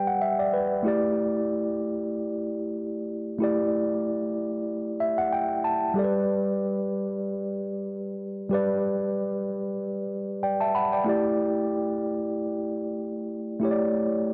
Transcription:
Already playing: G3 G4 B4 D5 G5
0.07 F#5
0.22 E5
0.39 D5
0.54 B4
0.83 A3 E4 G4
0.88 D5
3.39 A3 E4 G4
3.44 D5
5.00 E5
5.18 F#5
5.33 G5
5.64 A5
5.94 G3 G4 A4
5.99 D5
6.04 B4
8.49 G3 G4 B4
8.54 D5
10.43 D5 G5
10.61 E5 A5
10.75 F#5 B5
10.93 D5 G5
11.04 A3 E4 G4
11.09 D5
13.60 A3 E4 G4
13.65 C#5
13.71 D5

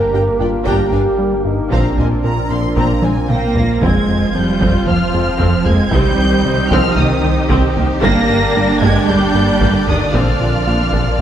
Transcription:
Already playing: G1 D3 A#3 D4 G4 A#4
0.13 G1 G2 D4 G4 G5 A#5
0.39 G1 G2 D4 F4 G4 D5 G5
0.65 G1 G2 G3 D4 G4 G5 A#5, taiko
0.92 G1 G2 A#3 D4 F5 G#5
1.19 G3
1.45 G2 D#4
1.70 A#1 A#2 F3 A#3 C4 D4 F4 F5 A#5, taiko
1.98 A#1 A#2 C4 D4 D#5 G#5, taiko low
2.24 A#1 A#2 C4 A#4 A#5
2.50 A#1 A#2 C4 A#4 F5 C6
2.76 A#1 A#2 A#3 C4 A#5, taiko
3.03 A#1 A#2 C4 D4 G#5, taiko high
3.29 A#3 G5 A#6, taiko mid
3.55 A#2 F5, taiko low
3.81 F1 F2 F3 G#3 C4 F4 C5 G#6, taiko
4.09 F2
4.35 F2 F3 G3 C4 G6
4.60 F2 F3 C4, taiko
4.86 F2 F3 A#3 C4 F6, taiko low
5.13 F2 G#3 C4
5.39 F2 F3 C4, taiko
5.65 F2 G#3 A#3 G#6, taiko low
5.91 C2 C3 D#3 G3 C4 D#4 G4 G6, taiko
6.18 C2
6.44 C2 C3 G3 C4
6.70 C2 C3 F3 C4 F6, taiko
6.95 C2 C3 D#3 G3 A#3 D#6, taiko low
7.24 C2 D#3 C4
7.50 C2 C3 C4, taiko
7.76 C2 D#3 A#3, taiko low
8.02 G1 G2 D3 G3 A#3 D4 D5 A#6, taiko
8.30 G2
8.55 G1 G3 A#3 D4
8.81 G1 G2 G3 G#3 A#3 G#6, taiko
9.07 G1 G3 G#3 D4 G6, taiko low
9.34 G1 G2 A#3
9.61 G1 G2 G3 A#3, taiko
9.87 G1 G2 D#3 G#3 A#3 D#6, taiko low
10.13 A#1 A#2 F3 A#3 C4 F4 A#4 F6, taiko
10.41 A#2
10.66 A#1 A#3 D4 F4
10.92 A#1 A#2 A#3, taiko

